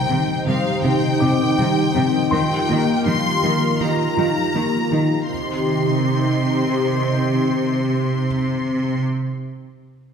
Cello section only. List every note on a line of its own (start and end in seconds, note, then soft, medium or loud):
0.10 0.18 C3 soft
0.46 0.54 C3 soft
0.83 0.91 C3 soft
1.22 1.30 C3 soft
1.59 1.67 C3 soft
1.96 2.04 C3 medium
2.32 2.40 D#3 medium
2.70 2.78 D#3 medium
3.07 3.15 D#3 soft
3.44 3.52 D#3 soft
3.81 3.89 D#3 soft
4.18 4.26 D#3 soft
4.55 4.63 D#3 soft
4.92 5.00 D#3 soft
5.28 9.01 C3 soft